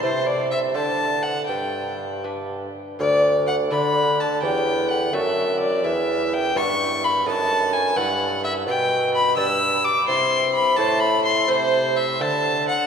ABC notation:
X:1
M:6/8
L:1/8
Q:3/8=84
K:G
V:1 name="Violin"
c d e a2 f | g3 z3 | [K:D] d2 f b2 a | g2 f e2 d |
e2 g c'2 b | a2 ^g f2 e | [K:G] g2 b e'2 d' | c'2 b a b c' |
c2 e a2 f |]
V:2 name="Lute"
[A,Ec]3 [Dc]3 | z3 [DB]3 | [K:D] z3 [DA]3 | [CG]3 [A,DF]3 |
z3 [B,EG]3 | [A,^DA]3 [EB]3 | [K:G] z3 [Dd]3 | [Ec]3 [A,Ec]3 |
[A,Ec]3 [Dc]3 |]
V:3 name="Lute" clef=bass
C,3 D,3 | G,,4- G,, z | [K:D] D,,3 D,3 | E,,3 F,,3 |
E,,3 G,,3 | F,,3 G,,3 | [K:G] B,,3 G,,2 z | C,3 A,,3 |
C,3 D,3 |]
V:4 name="Bassoon" clef=bass
C,3 D,3 | G,,4- G,, z | [K:D] D,,3 D,3 | E,,3 F,,3 |
E,,3 G,,3 | F,,3 G,,3 | [K:G] B,,3 G,,2 z | C,3 A,,3 |
C,3 D,3 |]